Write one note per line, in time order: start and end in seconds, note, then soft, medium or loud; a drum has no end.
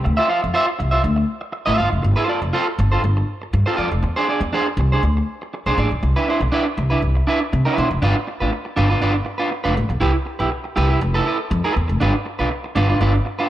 0.04 0.15 D2 medium
0.04 muted clean electric guitar stroke soft
0.17 0.27 F4 medium
0.17 0.28 C5 medium
0.17 0.30 E5 medium
0.28 0.40 F4 medium
0.28 0.40 C5 medium
0.28 0.41 F5 medium
0.43 0.52 F2 medium
0.43 muted clean electric guitar stroke soft
0.54 0.68 F4 medium
0.54 0.66 C5 medium
0.54 0.66 E5 medium
0.67 muted clean electric guitar stroke soft
0.79 0.97 C2 medium
0.79 muted clean electric guitar stroke soft
0.91 1.02 F4 soft
0.91 1.02 C5 medium
0.91 1.02 E5 medium
1.03 1.22 D2 medium
1.03 muted clean electric guitar stroke soft
1.16 muted clean electric guitar stroke soft
1.41 muted clean electric guitar stroke soft
1.52 muted clean electric guitar stroke soft
1.66 1.75 A1 medium
1.66 1.75 F4 medium
1.66 1.76 C5 medium
1.66 1.78 E5 medium
1.77 1.89 G1 medium
1.77 1.89 F4 medium
1.77 1.89 C5 medium
1.77 1.89 F5 medium
1.90 2.01 F1 medium
1.90 muted clean electric guitar stroke soft
2.02 2.13 G1 medium
2.02 muted clean electric guitar stroke soft
2.16 2.27 F4 medium
2.16 2.28 A4 medium
2.16 2.29 C5 medium
2.28 2.39 F4 medium
2.28 2.40 A4 soft
2.28 2.40 D5 medium
2.42 2.50 F1 medium
2.42 muted clean electric guitar stroke medium
2.53 2.67 F4 medium
2.53 2.67 A4 medium
2.53 2.66 C5 medium
2.68 muted clean electric guitar stroke soft
2.79 2.96 G1 loud
2.79 muted clean electric guitar stroke soft
2.92 3.02 F4 medium
2.92 3.02 A4 medium
2.92 3.01 C5 medium
3.04 3.21 G1 medium
3.04 muted clean electric guitar stroke soft
3.17 muted clean electric guitar stroke medium
3.42 muted clean electric guitar stroke soft
3.53 3.63 G2 loud
3.53 muted clean electric guitar stroke soft
3.66 3.76 F4 medium
3.66 3.77 A4 medium
3.66 3.78 C5 medium
3.77 3.88 F2 medium
3.77 3.88 F4 medium
3.77 3.89 A4 medium
3.77 3.89 D5 medium
3.91 4.00 F1 medium
3.91 muted clean electric guitar stroke medium
4.03 4.12 E2 medium
4.03 muted clean electric guitar stroke soft
4.16 4.27 D4 medium
4.16 4.28 G#4 medium
4.16 4.29 C5 medium
4.28 4.39 D4 medium
4.28 4.40 G#4 medium
4.28 4.40 D5 medium
4.41 4.49 E2 loud
4.53 4.67 D4 medium
4.53 4.67 G#4 medium
4.53 4.66 C5 medium
4.67 muted clean electric guitar stroke soft
4.77 4.95 C2 loud
4.77 muted clean electric guitar stroke soft
4.92 5.02 D4 soft
4.92 5.02 G#4 medium
4.92 5.01 C5 medium
5.03 5.20 D2 medium
5.03 muted clean electric guitar stroke soft
5.17 muted clean electric guitar stroke soft
5.42 muted clean electric guitar stroke soft
5.54 muted clean electric guitar stroke soft
5.66 5.74 B1 medium
5.66 5.77 D4 medium
5.66 5.77 G#4 medium
5.66 5.79 C5 medium
5.78 5.87 A1 loud
5.78 5.89 D4 medium
5.78 5.89 G#4 medium
5.78 5.89 D5 medium
5.91 5.99 B1 medium
5.91 muted clean electric guitar stroke soft
6.03 6.12 C2 medium
6.03 muted clean electric guitar stroke soft
6.16 6.27 D4 medium
6.16 6.28 E4 medium
6.16 6.28 B4 medium
6.28 6.39 D4 soft
6.28 6.39 E4 medium
6.28 6.40 C5 medium
6.41 6.49 B1 medium
6.41 muted clean electric guitar stroke medium
6.52 6.66 D4 medium
6.52 6.65 E4 medium
6.52 6.64 B4 loud
6.65 muted clean electric guitar stroke medium
6.78 6.95 C2 medium
6.78 muted clean electric guitar stroke soft
6.90 7.01 D4 soft
6.90 7.00 E4 medium
6.90 7.00 B4 medium
7.02 7.20 C2 medium
7.15 muted clean electric guitar stroke soft
7.27 7.41 D4 medium
7.27 7.40 E4 medium
7.27 7.40 B4 medium
7.41 muted clean electric guitar stroke soft
7.53 7.62 C3 loud
7.53 muted clean electric guitar stroke soft
7.65 7.76 D4 medium
7.65 7.77 E4 medium
7.65 7.79 B4 medium
7.77 7.87 B2 medium
7.77 7.88 D4 medium
7.77 7.89 E4 medium
7.77 7.89 C5 medium
7.91 7.99 F1 medium
7.91 muted clean electric guitar stroke soft
8.02 8.12 G1 medium
8.02 8.16 D4 medium
8.02 8.16 F4 medium
8.02 8.15 B4 medium
8.17 muted clean electric guitar stroke soft
8.27 muted clean electric guitar stroke soft
8.40 8.49 A1 medium
8.40 8.51 D4 soft
8.40 8.51 F4 medium
8.40 8.50 B4 medium
8.52 muted clean electric guitar stroke soft
8.65 muted clean electric guitar stroke soft
8.76 8.95 G1 loud
8.76 8.90 D4 medium
8.76 8.89 F4 medium
8.76 8.89 B4 medium
8.90 9.00 D4 soft
8.90 9.00 F4 medium
8.90 9.00 B4 medium
9.01 9.19 G1 medium
9.01 9.16 D4 medium
9.01 9.14 F4 medium
9.01 9.13 B4 medium
9.14 muted clean electric guitar stroke soft
9.25 muted clean electric guitar stroke soft
9.38 9.50 D4 soft
9.38 9.49 F4 medium
9.38 9.49 B4 medium
9.51 muted clean electric guitar stroke soft
9.64 9.73 F1 medium
9.64 9.74 D4 medium
9.64 9.75 F4 medium
9.64 9.75 B4 medium
9.75 9.89 A1 medium
9.75 muted clean electric guitar stroke soft
9.89 9.98 B1 medium
9.89 muted clean electric guitar stroke soft
10.00 10.11 C2 medium
10.00 10.15 E4 medium
10.00 10.13 G4 medium
10.00 10.12 B4 medium
10.13 muted clean electric guitar stroke soft
10.26 muted clean electric guitar stroke soft
10.39 10.48 B1 medium
10.39 10.50 E4 soft
10.39 10.50 G4 medium
10.39 10.49 B4 medium
10.51 muted clean electric guitar stroke soft
10.64 muted clean electric guitar stroke soft
10.76 10.94 C2 loud
10.76 10.89 E4 medium
10.76 10.89 G4 medium
10.76 10.88 B4 loud
10.89 11.00 E4 soft
10.89 11.00 G4 soft
10.89 10.99 B4 medium
11.01 11.19 F1 loud
11.01 muted clean electric guitar stroke soft
11.14 11.25 E4 medium
11.14 11.26 A4 medium
11.14 11.26 B4 medium
11.26 11.37 E4 medium
11.26 11.38 A4 medium
11.26 11.38 B4 medium
11.39 muted clean electric guitar stroke soft
11.51 11.60 F2 loud
11.51 muted clean electric guitar stroke soft
11.64 11.74 E4 medium
11.64 11.75 A4 medium
11.64 11.76 B4 medium
11.76 11.86 E2 medium
11.76 muted clean electric guitar stroke soft
11.88 11.98 F1 medium
11.88 muted clean electric guitar stroke soft
12.00 12.10 G1 loud
12.00 12.15 D4 medium
12.00 12.14 F4 medium
12.00 12.13 B4 medium
12.14 muted clean electric guitar stroke soft
12.26 muted clean electric guitar stroke soft
12.39 12.48 B1 medium
12.39 12.49 D4 medium
12.39 12.49 F4 medium
12.39 12.49 B4 medium
12.50 muted clean electric guitar stroke soft
12.64 muted clean electric guitar stroke medium
12.75 12.93 G1 loud
12.75 12.89 D4 medium
12.75 12.88 F4 medium
12.75 12.88 B4 medium
12.89 13.00 D4 soft
12.89 12.99 F4 soft
12.89 12.99 B4 medium
13.01 13.18 G1 loud
13.01 13.15 D4 medium
13.01 13.14 F4 medium
13.01 13.13 B4 medium
13.14 muted clean electric guitar stroke soft
13.25 muted clean electric guitar stroke soft
13.39 13.49 D4 medium
13.39 13.49 F4 medium
13.39 13.49 B4 medium